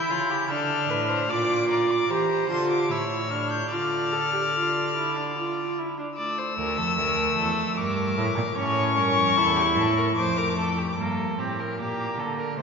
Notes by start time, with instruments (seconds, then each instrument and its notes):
Already playing: cello E3, violin E4 G6, viola E4
0.11 cello C#3, violin F4
0.30 violin G4
0.50 cello D3, viola D4, violin A4 F6
0.90 cello A2, violin B4
1.09 violin C5
1.29 cello A#2, viola F4, violin D5 D6
1.70 violin D5 A#5
1.91 violin D6
2.10 cello E3, viola G4, violin C5 A#5
2.50 cello D3, viola F4, violin C6
2.71 violin D6
2.90 cello A2, viola E4, violin C#5 E6
3.31 viola D4, violin F6
3.51 violin G6
3.71 cello D3, viola F4, violin D5 F6
4.13 viola A4
4.33 viola G4
4.54 viola F4
4.96 viola E4
5.16 viola D4
5.37 viola F4
5.78 viola E4
5.99 viola D4
6.17 viola A3, violin D5 E6
6.38 violin C5
6.57 cello D2, violin A#4
6.77 cello F2, violin A4
6.97 cello D2, violin A#4
7.37 cello E2, violin A4
7.58 cello F2
7.77 cello G2, violin A#4 D6
8.17 cello A2
8.37 cello A#2
8.56 cello A2, viola C#4, violin C#5 C#6
8.97 cello G2, violin A#4
9.17 cello F2
9.37 cello E2, viola E4, violin A4
9.56 violin G4
9.77 cello A2, violin A4
9.97 violin A#4
10.16 cello F2, viola A3, violin C5 D6
10.37 violin A#4
10.58 violin A4
10.78 violin G4
10.97 cello G2, viola A#3, violin A4
11.38 cello A2, viola C4, violin G4
11.59 violin A#4
11.78 cello A#2, viola A#3, violin G4
12.18 cello D3, violin A4
12.39 violin A#4
12.57 cello C3, viola A3, violin C5